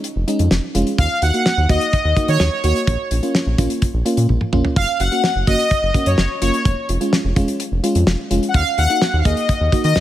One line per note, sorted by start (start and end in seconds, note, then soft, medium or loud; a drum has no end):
0.04 closed hi-hat medium
0.16 0.25 F1 medium
0.28 0.40 G#3 medium
0.28 0.40 C#4 medium
0.28 0.40 D#4 loud
0.28 closed hi-hat medium
0.39 0.49 F2 loud
0.39 closed hi-hat medium
0.51 0.61 F1 loud
0.51 snare loud
0.75 0.84 F1 medium
0.75 0.87 G#3 medium
0.75 0.87 C#4 medium
0.75 0.87 F4 loud
0.75 closed hi-hat medium
0.87 closed hi-hat soft
0.98 1.08 D#2 loud
0.98 1.23 F5 loud
0.98 kick loud
0.98 closed hi-hat medium
1.22 1.31 D#2 loud
1.22 1.28 D#4 medium
1.22 1.28 F#4 medium
1.22 1.71 F#5 loud
1.22 closed hi-hat medium
1.34 1.46 A#3 medium
1.34 1.46 D#4 medium
1.34 1.46 F#4 medium
1.34 closed hi-hat soft
1.46 snare loud
1.57 1.67 D#2 loud
1.69 1.79 D#2 loud
1.69 1.81 A#3 medium
1.69 1.81 D#4 medium
1.69 1.81 F#4 medium
1.69 2.30 D#5 loud
1.69 kick medium
1.69 closed hi-hat medium
1.81 closed hi-hat medium
1.93 kick medium
1.93 closed hi-hat medium
2.05 2.14 D#2 loud
2.16 2.29 A#3 medium
2.16 2.29 D#4 medium
2.16 2.29 F#4 medium
2.16 kick medium
2.16 closed hi-hat medium
2.28 2.38 D#3 loud
2.28 2.63 C#5 medium
2.28 closed hi-hat medium
2.40 2.50 D#2 loud
2.40 snare loud
2.64 2.73 D#2 loud
2.64 2.76 A#3 medium
2.64 2.76 D#4 medium
2.64 2.76 F#4 medium
2.64 3.08 C#5 medium
2.64 closed hi-hat medium
2.76 closed hi-hat soft
2.87 2.97 A#1 loud
2.87 kick loud
2.87 closed hi-hat medium
3.11 3.20 A#1 loud
3.11 3.17 C#4 medium
3.11 3.17 F4 medium
3.11 closed hi-hat medium
3.23 3.35 A#3 medium
3.23 3.35 C#4 medium
3.23 3.35 F4 medium
3.23 closed hi-hat soft
3.35 snare loud
3.46 3.56 A#1 loud
3.58 3.68 A#1 medium
3.58 3.70 A#3 medium
3.58 3.70 C#4 medium
3.58 3.70 F4 medium
3.58 kick medium
3.58 closed hi-hat medium
3.70 closed hi-hat medium
3.82 kick medium
3.82 closed hi-hat medium
3.94 4.03 A#1 loud
4.05 4.18 A#3 medium
4.05 4.18 C#4 medium
4.05 4.18 F4 loud
4.05 closed hi-hat medium
4.17 4.27 A#2 loud
4.17 closed hi-hat medium
4.29 4.39 A#1 loud
4.29 high tom medium
4.41 mid tom medium
4.53 4.62 A#1 loud
4.53 4.65 A#3 medium
4.53 4.65 C#4 medium
4.53 4.65 F4 loud
4.53 mid tom medium
4.65 floor tom medium
4.76 4.86 F#1 loud
4.76 5.01 F5 loud
4.76 kick loud
4.76 closed hi-hat medium
5.00 5.09 F#1 loud
5.00 5.06 C#4 medium
5.00 5.06 F#4 medium
5.00 5.49 F#5 loud
5.00 closed hi-hat medium
5.12 5.24 A#3 medium
5.12 5.24 C#4 medium
5.12 5.24 F#4 medium
5.12 closed hi-hat soft
5.24 snare loud
5.35 5.45 F#1 medium
5.47 5.57 F#1 medium
5.47 5.59 A#3 medium
5.47 5.59 C#4 medium
5.47 5.59 F#4 medium
5.47 6.08 D#5 loud
5.47 kick medium
5.47 closed hi-hat medium
5.59 closed hi-hat medium
5.71 kick medium
5.71 closed hi-hat medium
5.83 5.92 F#1 medium
5.94 6.07 A#3 medium
5.94 6.07 C#4 medium
5.94 6.07 F#4 medium
5.94 kick medium
5.94 closed hi-hat medium
6.06 6.16 F#2 medium
6.06 6.41 C#5 medium
6.06 closed hi-hat medium
6.18 6.28 F#1 loud
6.18 snare loud
6.42 6.51 F#1 medium
6.42 6.54 A#3 medium
6.42 6.54 C#4 medium
6.42 6.54 F4 medium
6.42 6.86 C#5 medium
6.42 closed hi-hat medium
6.54 closed hi-hat soft
6.65 6.75 F1 loud
6.65 kick loud
6.65 closed hi-hat medium
6.89 6.98 F1 loud
6.89 6.95 C#4 medium
6.89 6.95 F4 medium
6.89 closed hi-hat medium
7.01 7.13 G#3 medium
7.01 7.13 C#4 medium
7.01 7.13 F4 medium
7.01 closed hi-hat medium
7.13 snare loud
7.24 7.34 F1 loud
7.36 7.46 F1 loud
7.36 7.48 G#3 medium
7.36 7.48 C#4 medium
7.36 7.48 F4 medium
7.36 kick medium
7.36 closed hi-hat medium
7.48 closed hi-hat medium
7.60 closed hi-hat medium
7.72 7.81 F1 loud
7.83 7.96 G#3 medium
7.83 7.96 C#4 medium
7.83 7.96 F4 loud
7.83 closed hi-hat medium
7.95 8.05 F2 loud
7.95 closed hi-hat medium
8.07 8.17 F1 loud
8.07 snare loud
8.31 8.40 F1 medium
8.31 8.43 G#3 medium
8.31 8.43 C#4 medium
8.31 8.43 F4 medium
8.31 closed hi-hat medium
8.43 closed hi-hat soft
8.48 8.54 F#5 medium
8.54 8.64 D#2 loud
8.54 8.79 F5 loud
8.54 kick loud
8.54 closed hi-hat medium
8.78 8.87 D#2 loud
8.78 8.84 D#4 medium
8.78 8.84 F#4 medium
8.78 9.15 F#5 loud
8.78 closed hi-hat medium
8.90 9.02 A#3 medium
8.90 9.02 D#4 medium
8.90 9.02 F#4 medium
8.90 closed hi-hat medium
9.02 snare loud
9.13 9.23 D#2 loud
9.18 9.25 F5 medium
9.25 9.35 D#2 loud
9.25 9.37 A#3 medium
9.25 9.37 D#4 medium
9.25 9.37 G#4 medium
9.25 9.83 D#5 loud
9.25 kick loud
9.25 closed hi-hat medium
9.37 closed hi-hat medium
9.49 kick medium
9.49 closed hi-hat medium
9.61 9.70 D#2 loud
9.72 9.85 A#3 medium
9.72 9.85 D#4 medium
9.72 9.85 F#4 medium
9.72 kick medium
9.72 closed hi-hat medium
9.84 9.94 D#3 loud
9.84 10.00 D#5 loud
9.84 closed hi-hat medium
9.96 10.00 D#2 loud
9.96 snare loud